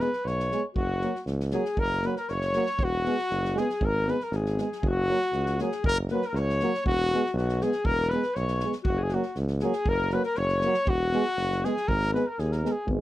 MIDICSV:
0, 0, Header, 1, 7, 480
1, 0, Start_track
1, 0, Tempo, 508044
1, 722, Time_signature, 2, 2, 24, 8
1, 5040, Tempo, 502934
1, 12366, End_track
2, 0, Start_track
2, 0, Title_t, "Alto saxophone"
2, 0, Program_c, 0, 65
2, 0, Note_on_c, 0, 71, 72
2, 233, Note_on_c, 0, 73, 83
2, 247, Note_off_c, 0, 71, 0
2, 602, Note_off_c, 0, 73, 0
2, 702, Note_on_c, 0, 66, 87
2, 1144, Note_off_c, 0, 66, 0
2, 1445, Note_on_c, 0, 68, 87
2, 1692, Note_on_c, 0, 70, 97
2, 1706, Note_off_c, 0, 68, 0
2, 1951, Note_on_c, 0, 71, 73
2, 1965, Note_off_c, 0, 70, 0
2, 2062, Note_off_c, 0, 71, 0
2, 2071, Note_on_c, 0, 70, 80
2, 2203, Note_on_c, 0, 73, 96
2, 2217, Note_off_c, 0, 70, 0
2, 2685, Note_on_c, 0, 66, 114
2, 2699, Note_off_c, 0, 73, 0
2, 3397, Note_on_c, 0, 68, 91
2, 3411, Note_off_c, 0, 66, 0
2, 3632, Note_on_c, 0, 70, 97
2, 3646, Note_off_c, 0, 68, 0
2, 3846, Note_on_c, 0, 71, 73
2, 3860, Note_off_c, 0, 70, 0
2, 3985, Note_on_c, 0, 70, 79
2, 3999, Note_off_c, 0, 71, 0
2, 4098, Note_on_c, 0, 68, 69
2, 4112, Note_off_c, 0, 70, 0
2, 4570, Note_off_c, 0, 68, 0
2, 4597, Note_on_c, 0, 66, 95
2, 5261, Note_off_c, 0, 66, 0
2, 5293, Note_on_c, 0, 68, 82
2, 5512, Note_off_c, 0, 68, 0
2, 5539, Note_on_c, 0, 70, 112
2, 5644, Note_off_c, 0, 70, 0
2, 5776, Note_on_c, 0, 71, 83
2, 5907, Note_on_c, 0, 70, 85
2, 5922, Note_off_c, 0, 71, 0
2, 6017, Note_on_c, 0, 73, 98
2, 6032, Note_off_c, 0, 70, 0
2, 6493, Note_off_c, 0, 73, 0
2, 6506, Note_on_c, 0, 66, 106
2, 6944, Note_off_c, 0, 66, 0
2, 6983, Note_on_c, 0, 66, 76
2, 7225, Note_on_c, 0, 68, 90
2, 7240, Note_off_c, 0, 66, 0
2, 7440, Note_on_c, 0, 70, 107
2, 7455, Note_off_c, 0, 68, 0
2, 7684, Note_on_c, 0, 71, 87
2, 7698, Note_off_c, 0, 70, 0
2, 7914, Note_on_c, 0, 73, 91
2, 7928, Note_off_c, 0, 71, 0
2, 8285, Note_off_c, 0, 73, 0
2, 8378, Note_on_c, 0, 66, 89
2, 8523, Note_on_c, 0, 68, 76
2, 8538, Note_off_c, 0, 66, 0
2, 8645, Note_on_c, 0, 66, 76
2, 8659, Note_off_c, 0, 68, 0
2, 8874, Note_off_c, 0, 66, 0
2, 9125, Note_on_c, 0, 68, 90
2, 9383, Note_on_c, 0, 70, 115
2, 9397, Note_off_c, 0, 68, 0
2, 9627, Note_on_c, 0, 71, 80
2, 9642, Note_off_c, 0, 70, 0
2, 9724, Note_off_c, 0, 71, 0
2, 9730, Note_on_c, 0, 70, 96
2, 9859, Note_on_c, 0, 73, 98
2, 9874, Note_off_c, 0, 70, 0
2, 10342, Note_on_c, 0, 66, 112
2, 10356, Note_off_c, 0, 73, 0
2, 11067, Note_on_c, 0, 68, 90
2, 11081, Note_off_c, 0, 66, 0
2, 11315, Note_on_c, 0, 70, 97
2, 11329, Note_off_c, 0, 68, 0
2, 11535, Note_off_c, 0, 70, 0
2, 11541, Note_on_c, 0, 71, 75
2, 11670, Note_on_c, 0, 70, 72
2, 11685, Note_off_c, 0, 71, 0
2, 11783, Note_on_c, 0, 68, 74
2, 11797, Note_off_c, 0, 70, 0
2, 11955, Note_on_c, 0, 70, 62
2, 11969, Note_off_c, 0, 68, 0
2, 12095, Note_on_c, 0, 68, 69
2, 12109, Note_off_c, 0, 70, 0
2, 12248, Note_off_c, 0, 68, 0
2, 12366, End_track
3, 0, Start_track
3, 0, Title_t, "Trumpet"
3, 0, Program_c, 1, 56
3, 13, Note_on_c, 1, 71, 96
3, 262, Note_on_c, 1, 73, 91
3, 276, Note_off_c, 1, 71, 0
3, 616, Note_off_c, 1, 73, 0
3, 727, Note_on_c, 1, 66, 101
3, 1157, Note_off_c, 1, 66, 0
3, 1460, Note_on_c, 1, 68, 83
3, 1694, Note_on_c, 1, 70, 117
3, 1709, Note_off_c, 1, 68, 0
3, 1947, Note_on_c, 1, 71, 84
3, 1961, Note_off_c, 1, 70, 0
3, 2047, Note_off_c, 1, 71, 0
3, 2053, Note_on_c, 1, 70, 90
3, 2167, Note_on_c, 1, 73, 104
3, 2181, Note_off_c, 1, 70, 0
3, 2682, Note_on_c, 1, 66, 120
3, 2696, Note_off_c, 1, 73, 0
3, 3386, Note_on_c, 1, 68, 92
3, 3401, Note_off_c, 1, 66, 0
3, 3648, Note_on_c, 1, 70, 96
3, 3662, Note_off_c, 1, 68, 0
3, 3876, Note_on_c, 1, 71, 89
3, 3890, Note_off_c, 1, 70, 0
3, 4001, Note_on_c, 1, 70, 81
3, 4016, Note_off_c, 1, 71, 0
3, 4120, Note_on_c, 1, 68, 68
3, 4134, Note_off_c, 1, 70, 0
3, 4581, Note_off_c, 1, 68, 0
3, 4620, Note_on_c, 1, 66, 108
3, 5273, Note_off_c, 1, 66, 0
3, 5315, Note_on_c, 1, 68, 76
3, 5524, Note_off_c, 1, 68, 0
3, 5552, Note_on_c, 1, 70, 127
3, 5654, Note_off_c, 1, 70, 0
3, 5795, Note_on_c, 1, 71, 87
3, 5935, Note_on_c, 1, 70, 88
3, 5949, Note_off_c, 1, 71, 0
3, 6047, Note_on_c, 1, 73, 101
3, 6062, Note_off_c, 1, 70, 0
3, 6496, Note_off_c, 1, 73, 0
3, 6502, Note_on_c, 1, 66, 120
3, 6942, Note_off_c, 1, 66, 0
3, 6990, Note_on_c, 1, 66, 86
3, 7232, Note_on_c, 1, 68, 94
3, 7246, Note_off_c, 1, 66, 0
3, 7450, Note_on_c, 1, 70, 112
3, 7464, Note_off_c, 1, 68, 0
3, 7674, Note_on_c, 1, 71, 96
3, 7688, Note_off_c, 1, 70, 0
3, 7930, Note_on_c, 1, 73, 92
3, 7944, Note_off_c, 1, 71, 0
3, 8293, Note_off_c, 1, 73, 0
3, 8409, Note_on_c, 1, 66, 98
3, 8569, Note_on_c, 1, 68, 88
3, 8583, Note_off_c, 1, 66, 0
3, 8674, Note_on_c, 1, 66, 80
3, 8688, Note_off_c, 1, 68, 0
3, 8888, Note_off_c, 1, 66, 0
3, 9138, Note_on_c, 1, 68, 96
3, 9384, Note_on_c, 1, 70, 116
3, 9399, Note_off_c, 1, 68, 0
3, 9621, Note_on_c, 1, 71, 89
3, 9635, Note_off_c, 1, 70, 0
3, 9728, Note_off_c, 1, 71, 0
3, 9734, Note_on_c, 1, 70, 88
3, 9843, Note_on_c, 1, 73, 104
3, 9857, Note_off_c, 1, 70, 0
3, 10344, Note_on_c, 1, 66, 122
3, 10358, Note_off_c, 1, 73, 0
3, 11064, Note_on_c, 1, 68, 92
3, 11078, Note_off_c, 1, 66, 0
3, 11285, Note_on_c, 1, 70, 118
3, 11300, Note_off_c, 1, 68, 0
3, 11524, Note_off_c, 1, 70, 0
3, 11533, Note_on_c, 1, 71, 86
3, 11656, Note_on_c, 1, 70, 79
3, 11670, Note_off_c, 1, 71, 0
3, 11780, Note_on_c, 1, 68, 67
3, 11795, Note_off_c, 1, 70, 0
3, 11899, Note_on_c, 1, 70, 74
3, 11913, Note_off_c, 1, 68, 0
3, 12084, Note_on_c, 1, 68, 82
3, 12098, Note_off_c, 1, 70, 0
3, 12243, Note_off_c, 1, 68, 0
3, 12366, End_track
4, 0, Start_track
4, 0, Title_t, "Euphonium"
4, 0, Program_c, 2, 58
4, 475, Note_on_c, 2, 59, 47
4, 573, Note_off_c, 2, 59, 0
4, 968, Note_on_c, 2, 58, 53
4, 1063, Note_off_c, 2, 58, 0
4, 1434, Note_on_c, 2, 58, 56
4, 1532, Note_off_c, 2, 58, 0
4, 1922, Note_on_c, 2, 58, 59
4, 2019, Note_off_c, 2, 58, 0
4, 2406, Note_on_c, 2, 58, 70
4, 2502, Note_off_c, 2, 58, 0
4, 2882, Note_on_c, 2, 59, 67
4, 2979, Note_off_c, 2, 59, 0
4, 3383, Note_on_c, 2, 59, 65
4, 3476, Note_off_c, 2, 59, 0
4, 3843, Note_on_c, 2, 59, 67
4, 3939, Note_off_c, 2, 59, 0
4, 4307, Note_on_c, 2, 59, 45
4, 4406, Note_off_c, 2, 59, 0
4, 4798, Note_on_c, 2, 58, 53
4, 4894, Note_off_c, 2, 58, 0
4, 5283, Note_on_c, 2, 58, 59
4, 5379, Note_off_c, 2, 58, 0
4, 5774, Note_on_c, 2, 58, 76
4, 5868, Note_off_c, 2, 58, 0
4, 6267, Note_on_c, 2, 58, 74
4, 6359, Note_off_c, 2, 58, 0
4, 6752, Note_on_c, 2, 59, 69
4, 6843, Note_off_c, 2, 59, 0
4, 7222, Note_on_c, 2, 59, 69
4, 7315, Note_off_c, 2, 59, 0
4, 7700, Note_on_c, 2, 59, 64
4, 7793, Note_off_c, 2, 59, 0
4, 8194, Note_on_c, 2, 59, 55
4, 8285, Note_off_c, 2, 59, 0
4, 8671, Note_on_c, 2, 58, 58
4, 8762, Note_off_c, 2, 58, 0
4, 9136, Note_on_c, 2, 58, 68
4, 9230, Note_off_c, 2, 58, 0
4, 9623, Note_on_c, 2, 58, 67
4, 9716, Note_off_c, 2, 58, 0
4, 10092, Note_on_c, 2, 58, 75
4, 10187, Note_off_c, 2, 58, 0
4, 10566, Note_on_c, 2, 59, 70
4, 10661, Note_off_c, 2, 59, 0
4, 11050, Note_on_c, 2, 59, 62
4, 11144, Note_off_c, 2, 59, 0
4, 11528, Note_on_c, 2, 59, 70
4, 11623, Note_off_c, 2, 59, 0
4, 11999, Note_on_c, 2, 59, 58
4, 12096, Note_off_c, 2, 59, 0
4, 12234, Note_on_c, 2, 59, 56
4, 12332, Note_off_c, 2, 59, 0
4, 12366, End_track
5, 0, Start_track
5, 0, Title_t, "Euphonium"
5, 0, Program_c, 3, 58
5, 0, Note_on_c, 3, 56, 57
5, 96, Note_off_c, 3, 56, 0
5, 498, Note_on_c, 3, 56, 64
5, 591, Note_off_c, 3, 56, 0
5, 961, Note_on_c, 3, 54, 60
5, 1058, Note_off_c, 3, 54, 0
5, 1451, Note_on_c, 3, 54, 75
5, 1546, Note_off_c, 3, 54, 0
5, 1944, Note_on_c, 3, 54, 66
5, 2036, Note_off_c, 3, 54, 0
5, 2414, Note_on_c, 3, 54, 75
5, 2508, Note_off_c, 3, 54, 0
5, 2894, Note_on_c, 3, 56, 67
5, 2988, Note_off_c, 3, 56, 0
5, 3350, Note_on_c, 3, 56, 76
5, 3449, Note_off_c, 3, 56, 0
5, 3841, Note_on_c, 3, 56, 64
5, 3937, Note_off_c, 3, 56, 0
5, 4340, Note_on_c, 3, 56, 59
5, 4432, Note_off_c, 3, 56, 0
5, 4810, Note_on_c, 3, 54, 70
5, 4904, Note_off_c, 3, 54, 0
5, 5296, Note_on_c, 3, 54, 68
5, 5390, Note_off_c, 3, 54, 0
5, 5796, Note_on_c, 3, 54, 69
5, 5886, Note_off_c, 3, 54, 0
5, 6278, Note_on_c, 3, 54, 81
5, 6368, Note_off_c, 3, 54, 0
5, 6762, Note_on_c, 3, 56, 74
5, 6851, Note_off_c, 3, 56, 0
5, 7221, Note_on_c, 3, 56, 66
5, 7315, Note_off_c, 3, 56, 0
5, 7714, Note_on_c, 3, 56, 64
5, 7805, Note_off_c, 3, 56, 0
5, 8195, Note_on_c, 3, 56, 59
5, 8285, Note_off_c, 3, 56, 0
5, 8669, Note_on_c, 3, 54, 66
5, 8761, Note_off_c, 3, 54, 0
5, 9139, Note_on_c, 3, 54, 73
5, 9232, Note_off_c, 3, 54, 0
5, 9610, Note_on_c, 3, 54, 76
5, 9705, Note_off_c, 3, 54, 0
5, 10121, Note_on_c, 3, 54, 76
5, 10210, Note_off_c, 3, 54, 0
5, 10581, Note_on_c, 3, 56, 83
5, 10674, Note_off_c, 3, 56, 0
5, 11064, Note_on_c, 3, 56, 83
5, 11155, Note_off_c, 3, 56, 0
5, 11535, Note_on_c, 3, 56, 69
5, 11628, Note_off_c, 3, 56, 0
5, 12016, Note_on_c, 3, 56, 64
5, 12109, Note_off_c, 3, 56, 0
5, 12291, Note_on_c, 3, 56, 53
5, 12366, Note_off_c, 3, 56, 0
5, 12366, End_track
6, 0, Start_track
6, 0, Title_t, "Tuba"
6, 0, Program_c, 4, 58
6, 231, Note_on_c, 4, 35, 91
6, 499, Note_off_c, 4, 35, 0
6, 714, Note_on_c, 4, 30, 93
6, 981, Note_off_c, 4, 30, 0
6, 1189, Note_on_c, 4, 37, 95
6, 1457, Note_off_c, 4, 37, 0
6, 1671, Note_on_c, 4, 30, 95
6, 1939, Note_off_c, 4, 30, 0
6, 2161, Note_on_c, 4, 30, 88
6, 2426, Note_off_c, 4, 30, 0
6, 2636, Note_on_c, 4, 28, 90
6, 2903, Note_off_c, 4, 28, 0
6, 3120, Note_on_c, 4, 30, 96
6, 3386, Note_off_c, 4, 30, 0
6, 3606, Note_on_c, 4, 32, 99
6, 3870, Note_off_c, 4, 32, 0
6, 4074, Note_on_c, 4, 32, 102
6, 4340, Note_off_c, 4, 32, 0
6, 4554, Note_on_c, 4, 30, 106
6, 4819, Note_off_c, 4, 30, 0
6, 5029, Note_on_c, 4, 37, 94
6, 5298, Note_off_c, 4, 37, 0
6, 5517, Note_on_c, 4, 30, 101
6, 5784, Note_off_c, 4, 30, 0
6, 5990, Note_on_c, 4, 37, 101
6, 6259, Note_off_c, 4, 37, 0
6, 6486, Note_on_c, 4, 28, 110
6, 6751, Note_off_c, 4, 28, 0
6, 6949, Note_on_c, 4, 35, 115
6, 7218, Note_off_c, 4, 35, 0
6, 7434, Note_on_c, 4, 28, 109
6, 7702, Note_off_c, 4, 28, 0
6, 7927, Note_on_c, 4, 35, 92
6, 8191, Note_off_c, 4, 35, 0
6, 8427, Note_on_c, 4, 30, 100
6, 8686, Note_off_c, 4, 30, 0
6, 8881, Note_on_c, 4, 37, 96
6, 9147, Note_off_c, 4, 37, 0
6, 9371, Note_on_c, 4, 30, 101
6, 9633, Note_off_c, 4, 30, 0
6, 9843, Note_on_c, 4, 30, 110
6, 10107, Note_off_c, 4, 30, 0
6, 10313, Note_on_c, 4, 28, 105
6, 10579, Note_off_c, 4, 28, 0
6, 10793, Note_on_c, 4, 30, 104
6, 11059, Note_off_c, 4, 30, 0
6, 11291, Note_on_c, 4, 32, 111
6, 11552, Note_off_c, 4, 32, 0
6, 11766, Note_on_c, 4, 39, 100
6, 12028, Note_off_c, 4, 39, 0
6, 12222, Note_on_c, 4, 32, 102
6, 12366, Note_off_c, 4, 32, 0
6, 12366, End_track
7, 0, Start_track
7, 0, Title_t, "Drums"
7, 2, Note_on_c, 9, 38, 24
7, 96, Note_off_c, 9, 38, 0
7, 123, Note_on_c, 9, 38, 23
7, 218, Note_off_c, 9, 38, 0
7, 251, Note_on_c, 9, 38, 26
7, 345, Note_off_c, 9, 38, 0
7, 372, Note_on_c, 9, 38, 25
7, 467, Note_off_c, 9, 38, 0
7, 487, Note_on_c, 9, 38, 26
7, 581, Note_off_c, 9, 38, 0
7, 716, Note_on_c, 9, 36, 74
7, 810, Note_off_c, 9, 36, 0
7, 956, Note_on_c, 9, 38, 27
7, 1050, Note_off_c, 9, 38, 0
7, 1090, Note_on_c, 9, 38, 25
7, 1185, Note_off_c, 9, 38, 0
7, 1196, Note_on_c, 9, 38, 29
7, 1291, Note_off_c, 9, 38, 0
7, 1325, Note_on_c, 9, 38, 27
7, 1419, Note_off_c, 9, 38, 0
7, 1425, Note_on_c, 9, 38, 29
7, 1519, Note_off_c, 9, 38, 0
7, 1559, Note_on_c, 9, 38, 25
7, 1653, Note_off_c, 9, 38, 0
7, 1673, Note_on_c, 9, 36, 84
7, 1767, Note_off_c, 9, 36, 0
7, 1913, Note_on_c, 9, 38, 28
7, 2007, Note_off_c, 9, 38, 0
7, 2045, Note_on_c, 9, 38, 27
7, 2139, Note_off_c, 9, 38, 0
7, 2156, Note_on_c, 9, 38, 24
7, 2251, Note_off_c, 9, 38, 0
7, 2280, Note_on_c, 9, 38, 27
7, 2375, Note_off_c, 9, 38, 0
7, 2389, Note_on_c, 9, 38, 29
7, 2484, Note_off_c, 9, 38, 0
7, 2515, Note_on_c, 9, 38, 23
7, 2609, Note_off_c, 9, 38, 0
7, 2634, Note_on_c, 9, 36, 97
7, 2728, Note_off_c, 9, 36, 0
7, 2883, Note_on_c, 9, 38, 33
7, 2978, Note_off_c, 9, 38, 0
7, 3011, Note_on_c, 9, 38, 27
7, 3106, Note_off_c, 9, 38, 0
7, 3123, Note_on_c, 9, 38, 27
7, 3218, Note_off_c, 9, 38, 0
7, 3257, Note_on_c, 9, 38, 29
7, 3352, Note_off_c, 9, 38, 0
7, 3373, Note_on_c, 9, 38, 28
7, 3467, Note_off_c, 9, 38, 0
7, 3492, Note_on_c, 9, 38, 23
7, 3587, Note_off_c, 9, 38, 0
7, 3600, Note_on_c, 9, 36, 92
7, 3694, Note_off_c, 9, 36, 0
7, 3853, Note_on_c, 9, 38, 34
7, 3947, Note_off_c, 9, 38, 0
7, 3971, Note_on_c, 9, 38, 30
7, 4065, Note_off_c, 9, 38, 0
7, 4083, Note_on_c, 9, 38, 27
7, 4177, Note_off_c, 9, 38, 0
7, 4212, Note_on_c, 9, 38, 28
7, 4306, Note_off_c, 9, 38, 0
7, 4327, Note_on_c, 9, 38, 34
7, 4421, Note_off_c, 9, 38, 0
7, 4461, Note_on_c, 9, 38, 22
7, 4556, Note_off_c, 9, 38, 0
7, 4566, Note_on_c, 9, 36, 85
7, 4660, Note_off_c, 9, 36, 0
7, 4929, Note_on_c, 9, 38, 31
7, 5023, Note_off_c, 9, 38, 0
7, 5028, Note_on_c, 9, 38, 26
7, 5124, Note_off_c, 9, 38, 0
7, 5161, Note_on_c, 9, 38, 33
7, 5257, Note_off_c, 9, 38, 0
7, 5281, Note_on_c, 9, 38, 33
7, 5377, Note_off_c, 9, 38, 0
7, 5405, Note_on_c, 9, 38, 23
7, 5500, Note_off_c, 9, 38, 0
7, 5524, Note_on_c, 9, 36, 112
7, 5619, Note_off_c, 9, 36, 0
7, 5752, Note_on_c, 9, 38, 31
7, 5848, Note_off_c, 9, 38, 0
7, 5884, Note_on_c, 9, 38, 26
7, 5979, Note_off_c, 9, 38, 0
7, 6011, Note_on_c, 9, 38, 29
7, 6106, Note_off_c, 9, 38, 0
7, 6147, Note_on_c, 9, 38, 31
7, 6242, Note_off_c, 9, 38, 0
7, 6245, Note_on_c, 9, 38, 32
7, 6341, Note_off_c, 9, 38, 0
7, 6386, Note_on_c, 9, 38, 23
7, 6481, Note_off_c, 9, 38, 0
7, 6494, Note_on_c, 9, 36, 93
7, 6589, Note_off_c, 9, 36, 0
7, 6759, Note_on_c, 9, 38, 31
7, 6855, Note_off_c, 9, 38, 0
7, 6876, Note_on_c, 9, 38, 28
7, 6972, Note_off_c, 9, 38, 0
7, 6990, Note_on_c, 9, 38, 26
7, 7085, Note_off_c, 9, 38, 0
7, 7094, Note_on_c, 9, 38, 30
7, 7190, Note_off_c, 9, 38, 0
7, 7211, Note_on_c, 9, 38, 29
7, 7307, Note_off_c, 9, 38, 0
7, 7316, Note_on_c, 9, 38, 23
7, 7412, Note_off_c, 9, 38, 0
7, 7440, Note_on_c, 9, 36, 89
7, 7535, Note_off_c, 9, 36, 0
7, 7681, Note_on_c, 9, 38, 34
7, 7776, Note_off_c, 9, 38, 0
7, 7798, Note_on_c, 9, 38, 27
7, 7894, Note_off_c, 9, 38, 0
7, 7921, Note_on_c, 9, 38, 26
7, 8016, Note_off_c, 9, 38, 0
7, 8038, Note_on_c, 9, 38, 37
7, 8134, Note_off_c, 9, 38, 0
7, 8155, Note_on_c, 9, 38, 33
7, 8251, Note_off_c, 9, 38, 0
7, 8273, Note_on_c, 9, 38, 26
7, 8368, Note_off_c, 9, 38, 0
7, 8394, Note_on_c, 9, 36, 95
7, 8489, Note_off_c, 9, 36, 0
7, 8622, Note_on_c, 9, 38, 32
7, 8717, Note_off_c, 9, 38, 0
7, 8753, Note_on_c, 9, 38, 26
7, 8848, Note_off_c, 9, 38, 0
7, 8872, Note_on_c, 9, 38, 28
7, 8967, Note_off_c, 9, 38, 0
7, 8992, Note_on_c, 9, 38, 33
7, 9088, Note_off_c, 9, 38, 0
7, 9107, Note_on_c, 9, 38, 31
7, 9203, Note_off_c, 9, 38, 0
7, 9231, Note_on_c, 9, 38, 27
7, 9326, Note_off_c, 9, 38, 0
7, 9355, Note_on_c, 9, 36, 97
7, 9450, Note_off_c, 9, 36, 0
7, 9591, Note_on_c, 9, 38, 28
7, 9686, Note_off_c, 9, 38, 0
7, 9714, Note_on_c, 9, 38, 30
7, 9809, Note_off_c, 9, 38, 0
7, 9825, Note_on_c, 9, 38, 26
7, 9920, Note_off_c, 9, 38, 0
7, 9955, Note_on_c, 9, 38, 29
7, 10050, Note_off_c, 9, 38, 0
7, 10077, Note_on_c, 9, 38, 32
7, 10172, Note_off_c, 9, 38, 0
7, 10198, Note_on_c, 9, 38, 31
7, 10293, Note_off_c, 9, 38, 0
7, 10323, Note_on_c, 9, 36, 105
7, 10419, Note_off_c, 9, 36, 0
7, 10564, Note_on_c, 9, 38, 31
7, 10659, Note_off_c, 9, 38, 0
7, 10683, Note_on_c, 9, 38, 31
7, 10779, Note_off_c, 9, 38, 0
7, 10802, Note_on_c, 9, 38, 32
7, 10897, Note_off_c, 9, 38, 0
7, 10938, Note_on_c, 9, 38, 30
7, 11033, Note_off_c, 9, 38, 0
7, 11061, Note_on_c, 9, 38, 30
7, 11156, Note_off_c, 9, 38, 0
7, 11181, Note_on_c, 9, 38, 29
7, 11276, Note_off_c, 9, 38, 0
7, 11291, Note_on_c, 9, 36, 79
7, 11386, Note_off_c, 9, 36, 0
7, 11423, Note_on_c, 9, 38, 30
7, 11519, Note_off_c, 9, 38, 0
7, 11546, Note_on_c, 9, 38, 36
7, 11641, Note_off_c, 9, 38, 0
7, 11772, Note_on_c, 9, 38, 32
7, 11868, Note_off_c, 9, 38, 0
7, 11898, Note_on_c, 9, 38, 27
7, 11994, Note_off_c, 9, 38, 0
7, 12025, Note_on_c, 9, 38, 29
7, 12121, Note_off_c, 9, 38, 0
7, 12240, Note_on_c, 9, 36, 71
7, 12336, Note_off_c, 9, 36, 0
7, 12366, End_track
0, 0, End_of_file